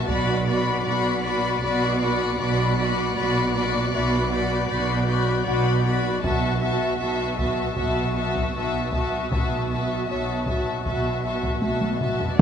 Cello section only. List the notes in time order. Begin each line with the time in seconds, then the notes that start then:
0.08 B2
0.86 B2
1.63 B2
2.40 B2
3.16 B2
3.93 B2
4.71 B2
5.48 B2
6.24 B2
7.01 B2
7.77 B2
8.54 B2
9.32 B2
10.08 B2
10.86 B2
11.62 B2